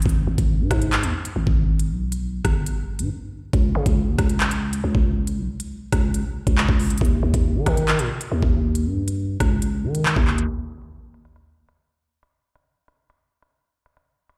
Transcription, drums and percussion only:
0.02 kick loud
0.02 closed hi-hat medium
0.09 closed hi-hat medium
0.38 kick medium
0.38 closed hi-hat medium
0.71 kick loud
0.71 cross-stick loud
0.71 closed hi-hat medium
0.82 closed hi-hat medium
0.92 clap loud
0.92 closed hi-hat soft
1.03 closed hi-hat medium
1.25 closed hi-hat medium
1.47 kick loud
1.79 closed hi-hat medium
2.12 closed hi-hat medium
2.45 kick loud
2.45 cross-stick loud
2.45 closed hi-hat medium
2.66 closed hi-hat medium
2.99 closed hi-hat medium
3.53 kick loud
3.53 closed hi-hat soft
3.86 kick medium
3.86 closed hi-hat medium
4.19 kick loud
4.19 cross-stick loud
4.19 closed hi-hat medium
4.29 closed hi-hat medium
4.40 clap loud
4.40 closed hi-hat soft
4.51 closed hi-hat medium
4.73 closed hi-hat medium
4.95 kick loud
5.27 closed hi-hat medium
5.60 closed hi-hat medium
5.92 kick loud
5.92 cross-stick loud
5.92 closed hi-hat medium
6.14 closed hi-hat medium
6.47 kick loud
6.47 closed hi-hat medium
6.58 clap loud
6.69 kick medium
6.79 open hi-hat medium
6.90 closed hi-hat medium
6.98 kick loud
6.98 closed hi-hat medium
7.05 closed hi-hat medium
7.34 kick medium
7.34 closed hi-hat medium
7.66 kick loud
7.66 cross-stick loud
7.66 closed hi-hat medium
7.77 closed hi-hat medium
7.88 clap loud
7.88 closed hi-hat soft
7.99 closed hi-hat medium
8.21 closed hi-hat medium
8.43 kick loud
8.75 closed hi-hat medium
9.08 closed hi-hat medium
9.40 kick loud
9.40 cross-stick loud
9.40 closed hi-hat medium
9.62 closed hi-hat medium
9.95 closed hi-hat medium
10.06 clap loud
10.16 kick loud
10.27 clap medium
10.38 closed hi-hat medium
10.49 closed hi-hat medium
10.82 closed hi-hat medium
11.14 closed hi-hat medium
11.25 closed hi-hat medium
11.36 closed hi-hat medium
11.69 closed hi-hat medium
12.23 closed hi-hat medium
12.56 closed hi-hat medium
12.88 closed hi-hat medium
13.10 closed hi-hat medium
13.42 closed hi-hat medium
13.86 closed hi-hat medium
13.97 closed hi-hat medium
14.29 closed hi-hat medium

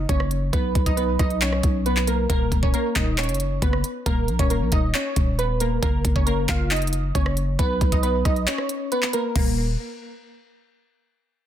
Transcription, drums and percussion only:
0.09 kick loud
0.09 closed hi-hat medium
0.20 cross-stick medium
0.31 closed hi-hat medium
0.53 kick loud
0.53 closed hi-hat medium
0.75 kick medium
0.75 closed hi-hat soft
0.86 kick loud
0.86 closed hi-hat medium
0.97 closed hi-hat medium
1.19 kick medium
1.19 cross-stick medium
1.19 closed hi-hat medium
1.30 closed hi-hat soft
1.41 clap loud
1.41 closed hi-hat medium
1.53 cross-stick medium
1.63 kick medium
1.63 closed hi-hat medium
1.86 closed hi-hat medium
1.97 clap medium
2.07 closed hi-hat medium
2.30 kick loud
2.30 closed hi-hat medium
2.52 kick medium
2.52 closed hi-hat medium
2.63 kick loud
2.74 closed hi-hat medium
2.95 kick medium
2.95 clap loud
2.95 closed hi-hat medium
3.18 clap loud
3.18 closed hi-hat medium
3.23 closed hi-hat medium
3.29 closed hi-hat medium
3.34 closed hi-hat medium
3.40 closed hi-hat medium
3.62 kick loud
3.62 closed hi-hat medium
3.73 cross-stick medium
3.84 closed hi-hat medium
4.06 kick loud
4.06 closed hi-hat medium
4.28 closed hi-hat medium
4.39 kick loud
4.39 closed hi-hat medium
4.50 closed hi-hat medium
4.72 kick medium
4.72 closed hi-hat medium
4.94 clap loud
4.94 closed hi-hat medium
5.16 kick medium
5.16 closed hi-hat medium
5.39 closed hi-hat medium
5.60 closed hi-hat medium
5.83 kick loud
5.83 closed hi-hat medium
6.05 kick medium
6.05 closed hi-hat medium
6.16 kick loud
6.27 closed hi-hat medium
6.48 kick medium
6.48 clap loud
6.48 closed hi-hat medium
6.71 clap loud
6.71 closed hi-hat medium
6.76 closed hi-hat medium
6.82 closed hi-hat medium
6.87 closed hi-hat medium
6.93 closed hi-hat medium
7.15 kick loud
7.15 closed hi-hat medium
7.26 cross-stick medium
7.37 closed hi-hat medium
7.59 kick loud
7.59 closed hi-hat medium
7.81 kick medium
7.81 closed hi-hat soft
7.92 kick loud
7.92 closed hi-hat medium
8.03 closed hi-hat medium
8.25 kick medium
8.25 cross-stick medium
8.25 closed hi-hat medium
8.36 closed hi-hat soft
8.47 clap loud
8.47 closed hi-hat medium
8.58 cross-stick loud
8.69 closed hi-hat medium
8.92 closed hi-hat medium
9.02 clap medium
9.13 closed hi-hat medium
9.36 kick loud
9.36 crash medium

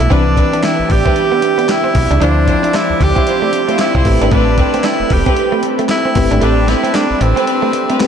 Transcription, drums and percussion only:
0.01 closed hi-hat soft
0.11 kick loud
0.11 closed hi-hat medium
0.37 kick loud
0.37 closed hi-hat medium
0.54 closed hi-hat medium
0.63 snare loud
0.63 clap medium
0.63 closed hi-hat medium
0.90 kick loud
0.90 open hi-hat medium
1.06 kick loud
1.06 closed hi-hat medium
1.16 closed hi-hat medium
1.42 closed hi-hat medium
1.59 closed hi-hat medium
1.69 snare loud
1.69 clap medium
1.69 closed hi-hat medium
1.95 kick medium
1.95 open hi-hat medium
2.11 closed hi-hat medium
2.22 closed hi-hat medium
2.48 kick loud
2.48 closed hi-hat medium
2.64 closed hi-hat medium
2.74 snare loud
2.74 clap medium
2.74 closed hi-hat medium
3.01 kick loud
3.01 open hi-hat medium
3.16 kick medium
3.16 closed hi-hat medium
3.27 closed hi-hat medium
3.53 closed hi-hat medium
3.69 closed hi-hat soft
3.79 snare loud
3.79 clap medium
3.79 closed hi-hat medium
3.95 kick medium
4.05 kick medium
4.05 open hi-hat loud
4.22 closed hi-hat soft
4.31 kick loud
4.31 closed hi-hat medium
4.58 kick loud
4.58 closed hi-hat medium
4.74 closed hi-hat medium
4.84 snare loud
4.84 clap medium
4.84 closed hi-hat medium
5.10 kick loud
5.10 open hi-hat medium
5.26 kick medium
5.26 closed hi-hat medium
5.37 closed hi-hat medium
5.63 closed hi-hat medium
5.79 closed hi-hat medium
5.89 snare loud
5.89 clap medium
5.89 closed hi-hat medium
6.15 kick medium
6.15 open hi-hat medium
6.32 closed hi-hat soft
6.42 closed hi-hat medium
6.68 snare medium
6.68 closed hi-hat medium
6.85 closed hi-hat medium
6.94 snare loud
6.94 clap loud
6.94 closed hi-hat medium
7.21 closed hi-hat medium
7.37 closed hi-hat medium
7.47 closed hi-hat medium
7.73 closed hi-hat medium
7.90 closed hi-hat medium
8.00 snare loud
8.00 clap medium
8.00 closed hi-hat medium

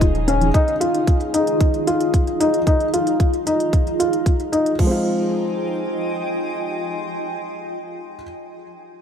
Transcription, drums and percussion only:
0.01 kick loud
0.01 closed hi-hat soft
0.15 closed hi-hat soft
0.28 closed hi-hat medium
0.41 closed hi-hat soft
0.54 kick loud
0.54 closed hi-hat soft
0.68 closed hi-hat soft
0.81 closed hi-hat medium
0.95 closed hi-hat soft
1.07 kick loud
1.07 closed hi-hat soft
1.21 closed hi-hat soft
1.34 closed hi-hat medium
1.47 closed hi-hat soft
1.60 kick loud
1.60 closed hi-hat soft
1.74 closed hi-hat soft
1.87 closed hi-hat medium
2.01 closed hi-hat soft
2.14 kick medium
2.14 closed hi-hat soft
2.27 closed hi-hat soft
2.41 closed hi-hat medium
2.54 closed hi-hat soft
2.67 kick medium
2.67 closed hi-hat soft
2.80 closed hi-hat soft
2.94 closed hi-hat medium
3.07 closed hi-hat soft
3.20 kick medium
3.20 closed hi-hat soft
3.33 closed hi-hat soft
3.47 closed hi-hat medium
3.60 closed hi-hat soft
3.73 kick loud
3.73 closed hi-hat soft
3.87 closed hi-hat soft
4.00 closed hi-hat medium
4.13 closed hi-hat soft
4.26 kick medium
4.26 closed hi-hat soft
4.40 closed hi-hat soft
4.53 closed hi-hat medium
4.66 closed hi-hat soft
4.79 kick medium
4.79 crash medium

